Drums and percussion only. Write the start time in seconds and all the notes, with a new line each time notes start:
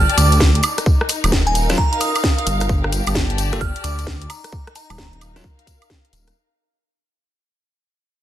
0.09 closed hi-hat
0.18 open hi-hat, tambourine
0.32 closed hi-hat, tambourine
0.40 kick, snare
0.55 closed hi-hat
0.63 open hi-hat, tambourine, high woodblock
0.78 cross-stick, closed hi-hat, tambourine
0.86 kick, tambourine
1.01 cross-stick
1.09 open hi-hat, tambourine
1.24 closed hi-hat, tambourine, high woodblock
1.32 kick, snare
1.47 closed hi-hat
1.55 open hi-hat, tambourine
1.69 cross-stick, snare, closed hi-hat, tambourine
1.77 kick, tambourine
1.93 closed hi-hat
2.00 open hi-hat, tambourine
2.15 closed hi-hat, tambourine, high woodblock
2.24 kick, snare
2.38 closed hi-hat
2.47 open hi-hat, tambourine
2.60 cross-stick, closed hi-hat, tambourine
2.69 kick, tambourine
2.84 cross-stick
2.92 open hi-hat, tambourine
3.07 closed hi-hat, tambourine, high woodblock
3.15 kick, snare
3.30 closed hi-hat
3.38 open hi-hat, tambourine
3.53 cross-stick, closed hi-hat, tambourine
3.61 kick, tambourine
3.76 closed hi-hat
3.84 open hi-hat, tambourine
3.99 closed hi-hat, tambourine
4.07 kick, snare
4.22 closed hi-hat
4.30 open hi-hat, tambourine, high woodblock
4.44 cross-stick, closed hi-hat, tambourine
4.53 kick, tambourine
4.67 cross-stick, closed hi-hat
4.75 open hi-hat, tambourine
4.90 closed hi-hat, tambourine, high woodblock
4.98 kick, snare, tambourine
5.13 closed hi-hat
5.21 open hi-hat, tambourine, high woodblock
5.36 cross-stick, snare, closed hi-hat, tambourine
5.44 kick, tambourine
5.59 closed hi-hat
5.67 kick, open hi-hat, tambourine
5.82 closed hi-hat, tambourine, high woodblock
5.90 kick, snare, tambourine
6.05 closed hi-hat
6.13 open hi-hat, tambourine
6.28 cross-stick, closed hi-hat, tambourine